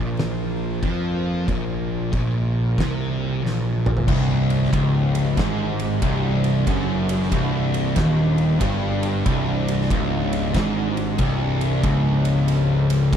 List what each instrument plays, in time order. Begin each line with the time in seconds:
Already playing: picked electric bass A#1, distorted electric guitar A#2, synth drone A#3 F4 C5
0.17 snare, crash
0.83 picked electric bass F2, distorted electric guitar F3, kick, crash
1.48 picked electric bass A#1, distorted electric guitar A#2, synth drone A#4, kick, crash
2.12 picked electric bass A#1, distorted electric guitar A#2, kick, crash
2.78 picked electric bass C2, distorted electric guitar C3, kick, snare, crash
3.43 picked electric bass A#1, distorted electric guitar A#2, snare
3.86 mid tom
3.97 floor tom
4.07 picked electric bass C1, distorted electric guitar C2, synth drone D4 G4, kick, crash
4.12 synth drone C3
4.50 ride
4.64 snare
4.73 picked electric bass C#1, distorted electric guitar C#2, kick, ride
5.15 ride
5.37 picked electric bass G#1, distorted electric guitar G#2, kick, snare, ride
5.79 ride
6.02 picked electric bass C1, distorted electric guitar C2, kick, ride
6.44 ride
6.67 picked electric bass F#1, distorted electric guitar F#2, kick, ride
7.09 ride
7.23 snare
7.32 picked electric bass C1, distorted electric guitar C2, kick, ride
7.74 ride
7.96 picked electric bass D#1, distorted electric guitar D#2, kick, snare, ride
8.38 ride
8.60 picked electric bass G1, distorted electric guitar G2, kick, ride
9.03 ride
9.25 picked electric bass C1, distorted electric guitar C2, kick, ride
9.68 ride
9.81 snare
9.90 picked electric bass C#1, distorted electric guitar C#2, kick, ride
10.33 ride
10.54 picked electric bass G#1, distorted electric guitar G#2, kick, snare, ride
10.97 ride
11.18 picked electric bass C1, distorted electric guitar C2, kick, ride
11.61 ride
11.83 picked electric bass C#1, distorted electric guitar C#2, kick, ride
12.25 ride
12.48 ride
12.90 ride
13.13 kick, ride